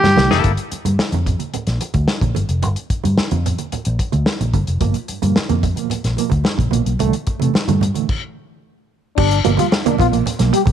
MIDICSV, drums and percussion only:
0, 0, Header, 1, 2, 480
1, 0, Start_track
1, 0, Tempo, 544959
1, 393, Time_signature, 4, 2, 24, 8
1, 9443, End_track
2, 0, Start_track
2, 0, Title_t, "Drums"
2, 33, Note_on_c, 9, 38, 65
2, 33, Note_on_c, 9, 63, 83
2, 121, Note_off_c, 9, 38, 0
2, 121, Note_off_c, 9, 63, 0
2, 144, Note_on_c, 9, 62, 43
2, 144, Note_on_c, 9, 63, 78
2, 155, Note_on_c, 9, 38, 100
2, 232, Note_off_c, 9, 62, 0
2, 232, Note_off_c, 9, 63, 0
2, 243, Note_off_c, 9, 38, 0
2, 271, Note_on_c, 9, 38, 98
2, 359, Note_off_c, 9, 38, 0
2, 387, Note_on_c, 9, 42, 71
2, 391, Note_on_c, 9, 36, 102
2, 391, Note_on_c, 9, 64, 68
2, 475, Note_off_c, 9, 42, 0
2, 479, Note_off_c, 9, 36, 0
2, 479, Note_off_c, 9, 64, 0
2, 505, Note_on_c, 9, 42, 49
2, 593, Note_off_c, 9, 42, 0
2, 630, Note_on_c, 9, 42, 56
2, 644, Note_on_c, 9, 62, 32
2, 718, Note_off_c, 9, 42, 0
2, 732, Note_off_c, 9, 62, 0
2, 749, Note_on_c, 9, 63, 68
2, 754, Note_on_c, 9, 42, 54
2, 837, Note_off_c, 9, 63, 0
2, 842, Note_off_c, 9, 42, 0
2, 872, Note_on_c, 9, 38, 96
2, 960, Note_off_c, 9, 38, 0
2, 988, Note_on_c, 9, 42, 49
2, 1005, Note_on_c, 9, 63, 77
2, 1076, Note_off_c, 9, 42, 0
2, 1093, Note_off_c, 9, 63, 0
2, 1113, Note_on_c, 9, 36, 75
2, 1116, Note_on_c, 9, 42, 72
2, 1117, Note_on_c, 9, 64, 72
2, 1201, Note_off_c, 9, 36, 0
2, 1204, Note_off_c, 9, 42, 0
2, 1205, Note_off_c, 9, 64, 0
2, 1227, Note_on_c, 9, 63, 54
2, 1231, Note_on_c, 9, 42, 43
2, 1315, Note_off_c, 9, 63, 0
2, 1319, Note_off_c, 9, 42, 0
2, 1352, Note_on_c, 9, 42, 69
2, 1356, Note_on_c, 9, 62, 31
2, 1356, Note_on_c, 9, 64, 69
2, 1440, Note_off_c, 9, 42, 0
2, 1444, Note_off_c, 9, 62, 0
2, 1444, Note_off_c, 9, 64, 0
2, 1468, Note_on_c, 9, 42, 43
2, 1473, Note_on_c, 9, 38, 32
2, 1556, Note_off_c, 9, 42, 0
2, 1561, Note_off_c, 9, 38, 0
2, 1591, Note_on_c, 9, 42, 73
2, 1600, Note_on_c, 9, 62, 37
2, 1679, Note_off_c, 9, 42, 0
2, 1688, Note_off_c, 9, 62, 0
2, 1707, Note_on_c, 9, 42, 48
2, 1707, Note_on_c, 9, 63, 62
2, 1713, Note_on_c, 9, 36, 80
2, 1795, Note_off_c, 9, 42, 0
2, 1795, Note_off_c, 9, 63, 0
2, 1801, Note_off_c, 9, 36, 0
2, 1829, Note_on_c, 9, 38, 91
2, 1917, Note_off_c, 9, 38, 0
2, 1950, Note_on_c, 9, 36, 79
2, 1955, Note_on_c, 9, 63, 73
2, 1958, Note_on_c, 9, 42, 43
2, 2039, Note_off_c, 9, 36, 0
2, 2043, Note_off_c, 9, 63, 0
2, 2046, Note_off_c, 9, 42, 0
2, 2068, Note_on_c, 9, 63, 79
2, 2081, Note_on_c, 9, 42, 62
2, 2156, Note_off_c, 9, 63, 0
2, 2169, Note_off_c, 9, 42, 0
2, 2192, Note_on_c, 9, 42, 48
2, 2280, Note_off_c, 9, 42, 0
2, 2311, Note_on_c, 9, 62, 33
2, 2311, Note_on_c, 9, 64, 74
2, 2314, Note_on_c, 9, 42, 73
2, 2399, Note_off_c, 9, 62, 0
2, 2399, Note_off_c, 9, 64, 0
2, 2402, Note_off_c, 9, 42, 0
2, 2432, Note_on_c, 9, 42, 45
2, 2520, Note_off_c, 9, 42, 0
2, 2555, Note_on_c, 9, 36, 88
2, 2556, Note_on_c, 9, 42, 55
2, 2643, Note_off_c, 9, 36, 0
2, 2644, Note_off_c, 9, 42, 0
2, 2674, Note_on_c, 9, 63, 70
2, 2687, Note_on_c, 9, 42, 51
2, 2762, Note_off_c, 9, 63, 0
2, 2775, Note_off_c, 9, 42, 0
2, 2797, Note_on_c, 9, 38, 95
2, 2885, Note_off_c, 9, 38, 0
2, 2916, Note_on_c, 9, 42, 41
2, 2922, Note_on_c, 9, 63, 76
2, 3004, Note_off_c, 9, 42, 0
2, 3010, Note_off_c, 9, 63, 0
2, 3046, Note_on_c, 9, 64, 83
2, 3047, Note_on_c, 9, 42, 72
2, 3134, Note_off_c, 9, 64, 0
2, 3135, Note_off_c, 9, 42, 0
2, 3157, Note_on_c, 9, 42, 46
2, 3159, Note_on_c, 9, 63, 52
2, 3245, Note_off_c, 9, 42, 0
2, 3247, Note_off_c, 9, 63, 0
2, 3279, Note_on_c, 9, 42, 62
2, 3283, Note_on_c, 9, 62, 32
2, 3283, Note_on_c, 9, 64, 68
2, 3367, Note_off_c, 9, 42, 0
2, 3371, Note_off_c, 9, 62, 0
2, 3371, Note_off_c, 9, 64, 0
2, 3392, Note_on_c, 9, 42, 51
2, 3480, Note_off_c, 9, 42, 0
2, 3516, Note_on_c, 9, 36, 88
2, 3518, Note_on_c, 9, 42, 77
2, 3604, Note_off_c, 9, 36, 0
2, 3606, Note_off_c, 9, 42, 0
2, 3632, Note_on_c, 9, 63, 66
2, 3636, Note_on_c, 9, 42, 41
2, 3720, Note_off_c, 9, 63, 0
2, 3724, Note_off_c, 9, 42, 0
2, 3753, Note_on_c, 9, 38, 87
2, 3757, Note_on_c, 9, 62, 34
2, 3841, Note_off_c, 9, 38, 0
2, 3845, Note_off_c, 9, 62, 0
2, 3882, Note_on_c, 9, 63, 68
2, 3883, Note_on_c, 9, 42, 45
2, 3970, Note_off_c, 9, 63, 0
2, 3971, Note_off_c, 9, 42, 0
2, 3995, Note_on_c, 9, 36, 81
2, 3996, Note_on_c, 9, 63, 80
2, 3997, Note_on_c, 9, 42, 63
2, 4083, Note_off_c, 9, 36, 0
2, 4084, Note_off_c, 9, 63, 0
2, 4085, Note_off_c, 9, 42, 0
2, 4116, Note_on_c, 9, 42, 46
2, 4204, Note_off_c, 9, 42, 0
2, 4233, Note_on_c, 9, 42, 75
2, 4235, Note_on_c, 9, 36, 95
2, 4239, Note_on_c, 9, 64, 64
2, 4321, Note_off_c, 9, 42, 0
2, 4323, Note_off_c, 9, 36, 0
2, 4327, Note_off_c, 9, 64, 0
2, 4352, Note_on_c, 9, 42, 49
2, 4440, Note_off_c, 9, 42, 0
2, 4477, Note_on_c, 9, 42, 57
2, 4565, Note_off_c, 9, 42, 0
2, 4598, Note_on_c, 9, 63, 70
2, 4603, Note_on_c, 9, 42, 57
2, 4687, Note_off_c, 9, 63, 0
2, 4691, Note_off_c, 9, 42, 0
2, 4719, Note_on_c, 9, 38, 92
2, 4807, Note_off_c, 9, 38, 0
2, 4838, Note_on_c, 9, 42, 44
2, 4841, Note_on_c, 9, 63, 77
2, 4926, Note_off_c, 9, 42, 0
2, 4929, Note_off_c, 9, 63, 0
2, 4959, Note_on_c, 9, 62, 36
2, 4959, Note_on_c, 9, 64, 79
2, 4960, Note_on_c, 9, 36, 81
2, 4964, Note_on_c, 9, 42, 72
2, 5047, Note_off_c, 9, 62, 0
2, 5047, Note_off_c, 9, 64, 0
2, 5048, Note_off_c, 9, 36, 0
2, 5052, Note_off_c, 9, 42, 0
2, 5074, Note_on_c, 9, 63, 48
2, 5083, Note_on_c, 9, 42, 47
2, 5162, Note_off_c, 9, 63, 0
2, 5171, Note_off_c, 9, 42, 0
2, 5195, Note_on_c, 9, 62, 33
2, 5195, Note_on_c, 9, 64, 69
2, 5206, Note_on_c, 9, 42, 68
2, 5283, Note_off_c, 9, 62, 0
2, 5283, Note_off_c, 9, 64, 0
2, 5294, Note_off_c, 9, 42, 0
2, 5322, Note_on_c, 9, 42, 47
2, 5327, Note_on_c, 9, 38, 30
2, 5410, Note_off_c, 9, 42, 0
2, 5415, Note_off_c, 9, 38, 0
2, 5434, Note_on_c, 9, 62, 34
2, 5446, Note_on_c, 9, 42, 70
2, 5522, Note_off_c, 9, 62, 0
2, 5534, Note_off_c, 9, 42, 0
2, 5546, Note_on_c, 9, 63, 73
2, 5563, Note_on_c, 9, 42, 49
2, 5564, Note_on_c, 9, 36, 88
2, 5634, Note_off_c, 9, 63, 0
2, 5651, Note_off_c, 9, 42, 0
2, 5652, Note_off_c, 9, 36, 0
2, 5672, Note_on_c, 9, 62, 32
2, 5680, Note_on_c, 9, 38, 97
2, 5760, Note_off_c, 9, 62, 0
2, 5768, Note_off_c, 9, 38, 0
2, 5792, Note_on_c, 9, 63, 73
2, 5802, Note_on_c, 9, 36, 90
2, 5812, Note_on_c, 9, 42, 45
2, 5880, Note_off_c, 9, 63, 0
2, 5890, Note_off_c, 9, 36, 0
2, 5900, Note_off_c, 9, 42, 0
2, 5909, Note_on_c, 9, 63, 80
2, 5930, Note_on_c, 9, 42, 64
2, 5997, Note_off_c, 9, 63, 0
2, 6018, Note_off_c, 9, 42, 0
2, 6046, Note_on_c, 9, 42, 48
2, 6134, Note_off_c, 9, 42, 0
2, 6160, Note_on_c, 9, 62, 32
2, 6160, Note_on_c, 9, 64, 77
2, 6166, Note_on_c, 9, 42, 75
2, 6248, Note_off_c, 9, 62, 0
2, 6248, Note_off_c, 9, 64, 0
2, 6254, Note_off_c, 9, 42, 0
2, 6283, Note_on_c, 9, 42, 53
2, 6371, Note_off_c, 9, 42, 0
2, 6401, Note_on_c, 9, 42, 56
2, 6406, Note_on_c, 9, 36, 83
2, 6410, Note_on_c, 9, 62, 32
2, 6489, Note_off_c, 9, 42, 0
2, 6494, Note_off_c, 9, 36, 0
2, 6498, Note_off_c, 9, 62, 0
2, 6514, Note_on_c, 9, 63, 74
2, 6534, Note_on_c, 9, 42, 60
2, 6602, Note_off_c, 9, 63, 0
2, 6622, Note_off_c, 9, 42, 0
2, 6640, Note_on_c, 9, 62, 34
2, 6651, Note_on_c, 9, 38, 94
2, 6728, Note_off_c, 9, 62, 0
2, 6739, Note_off_c, 9, 38, 0
2, 6769, Note_on_c, 9, 42, 47
2, 6770, Note_on_c, 9, 63, 82
2, 6857, Note_off_c, 9, 42, 0
2, 6858, Note_off_c, 9, 63, 0
2, 6880, Note_on_c, 9, 62, 40
2, 6880, Note_on_c, 9, 64, 78
2, 6894, Note_on_c, 9, 42, 75
2, 6968, Note_off_c, 9, 62, 0
2, 6968, Note_off_c, 9, 64, 0
2, 6982, Note_off_c, 9, 42, 0
2, 6997, Note_on_c, 9, 63, 54
2, 7006, Note_on_c, 9, 42, 47
2, 7085, Note_off_c, 9, 63, 0
2, 7094, Note_off_c, 9, 42, 0
2, 7126, Note_on_c, 9, 49, 72
2, 7127, Note_on_c, 9, 36, 97
2, 7214, Note_off_c, 9, 49, 0
2, 7215, Note_off_c, 9, 36, 0
2, 8082, Note_on_c, 9, 49, 91
2, 8082, Note_on_c, 9, 64, 79
2, 8085, Note_on_c, 9, 36, 107
2, 8170, Note_off_c, 9, 64, 0
2, 8171, Note_off_c, 9, 49, 0
2, 8173, Note_off_c, 9, 36, 0
2, 8202, Note_on_c, 9, 42, 55
2, 8290, Note_off_c, 9, 42, 0
2, 8320, Note_on_c, 9, 42, 70
2, 8329, Note_on_c, 9, 62, 33
2, 8408, Note_off_c, 9, 42, 0
2, 8417, Note_off_c, 9, 62, 0
2, 8431, Note_on_c, 9, 63, 85
2, 8447, Note_on_c, 9, 42, 67
2, 8519, Note_off_c, 9, 63, 0
2, 8535, Note_off_c, 9, 42, 0
2, 8559, Note_on_c, 9, 62, 42
2, 8563, Note_on_c, 9, 38, 101
2, 8647, Note_off_c, 9, 62, 0
2, 8651, Note_off_c, 9, 38, 0
2, 8683, Note_on_c, 9, 63, 92
2, 8686, Note_on_c, 9, 42, 52
2, 8771, Note_off_c, 9, 63, 0
2, 8774, Note_off_c, 9, 42, 0
2, 8794, Note_on_c, 9, 62, 42
2, 8794, Note_on_c, 9, 64, 82
2, 8804, Note_on_c, 9, 36, 83
2, 8814, Note_on_c, 9, 42, 78
2, 8883, Note_off_c, 9, 62, 0
2, 8883, Note_off_c, 9, 64, 0
2, 8892, Note_off_c, 9, 36, 0
2, 8902, Note_off_c, 9, 42, 0
2, 8924, Note_on_c, 9, 42, 54
2, 9012, Note_off_c, 9, 42, 0
2, 9035, Note_on_c, 9, 64, 76
2, 9044, Note_on_c, 9, 42, 76
2, 9123, Note_off_c, 9, 64, 0
2, 9132, Note_off_c, 9, 42, 0
2, 9154, Note_on_c, 9, 42, 59
2, 9159, Note_on_c, 9, 38, 33
2, 9242, Note_off_c, 9, 42, 0
2, 9247, Note_off_c, 9, 38, 0
2, 9280, Note_on_c, 9, 42, 82
2, 9368, Note_off_c, 9, 42, 0
2, 9385, Note_on_c, 9, 63, 81
2, 9397, Note_on_c, 9, 36, 103
2, 9397, Note_on_c, 9, 42, 47
2, 9443, Note_off_c, 9, 36, 0
2, 9443, Note_off_c, 9, 42, 0
2, 9443, Note_off_c, 9, 63, 0
2, 9443, End_track
0, 0, End_of_file